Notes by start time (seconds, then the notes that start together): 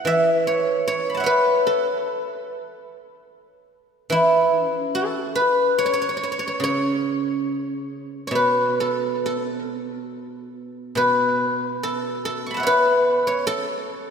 Already playing: E5
0.05 E3 E5
0.32 C#5
0.47 C#5
0.88 C#5
1.10 B5
1.14 F#5 A5
1.20 C#5 E5
1.26 B4
1.67 A4
4.10 E3 E4
4.64 C#4
4.95 A4
5.36 B4
5.79 C#5
5.86 C#5
5.94 C#5
6.02 C#5
6.09 C#5
6.17 C#5
6.23 C#5
6.32 C#5
6.39 C#5
6.48 C#5
6.60 C#3 C#5
8.27 B2 C#5
8.35 B4
8.80 A4
9.26 A4
10.95 B2 B4
11.83 A4
12.25 A4
12.46 C#6
12.51 A5 B5
12.57 E5 F#5
12.63 B4 C#5
13.27 C#5
13.47 A4